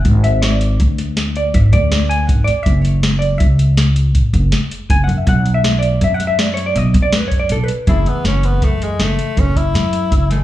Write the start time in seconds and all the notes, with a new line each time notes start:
Already playing: F#5
0.05 G#1, kick, closed hi-hat
0.24 E5, closed hi-hat
0.42 D5, snare, closed hi-hat
0.61 snare, closed hi-hat
0.80 D2 C#5, kick, closed hi-hat
0.98 snare, closed hi-hat
1.17 snare, closed hi-hat
1.36 D5, closed hi-hat
1.54 G#1 E5, kick, closed hi-hat
1.73 D2 D5, kick, closed hi-hat
1.92 snare, closed hi-hat
2.09 G#5, closed hi-hat
2.27 G#1 F#5, kick, closed hi-hat
2.44 D5, snare, closed hi-hat
2.63 F#1 E5, kick, closed hi-hat
2.82 C#5, closed hi-hat
3.03 snare, closed hi-hat
3.19 D5, closed hi-hat
3.38 C#2 E5, kick, closed hi-hat
3.59 closed hi-hat
3.77 snare, closed hi-hat
3.96 closed hi-hat
4.15 A1, kick, closed hi-hat
4.33 F#1, kick, closed hi-hat
4.52 snare, closed hi-hat
4.71 closed hi-hat
4.90 F#1 G#5, kick, closed hi-hat
5.04 F#2 F#5
5.09 closed hi-hat
5.17 E5
5.27 B1 F#5, kick, closed hi-hat
5.46 closed hi-hat
5.54 E5
5.64 snare, closed hi-hat
5.79 D5, closed hi-hat
6.01 F#2 E5, closed hi-hat
6.14 F#5
6.20 snare, closed hi-hat
6.27 E5
6.39 D5, snare, closed hi-hat
6.54 C#5, snare, closed hi-hat
6.66 D5
6.76 B1 D#5, closed hi-hat
6.94 F#2, kick, closed hi-hat
7.02 D5
7.12 B4, snare, closed hi-hat
7.28 C#5, kick, closed hi-hat
7.39 D5
7.49 B1 A4, closed hi-hat
7.64 B4
7.68 closed hi-hat
7.87 F#1 E3 A3 E4 G#4, kick, closed hi-hat
8.06 B3, closed hi-hat
8.24 F#1 C#4, snare, closed hi-hat
8.43 B3, closed hi-hat
8.62 F#2 A3, kick, snare, closed hi-hat
8.82 G#3, closed hi-hat
8.99 F#1 A3, snare, closed hi-hat
9.19 closed hi-hat
9.37 F#1 C#4, kick, closed hi-hat
9.56 E4, kick, closed hi-hat
9.74 F#2, snare, closed hi-hat
9.93 closed hi-hat
10.11 F#1, kick, closed hi-hat
10.30 E3 G#3 A3, snare, closed hi-hat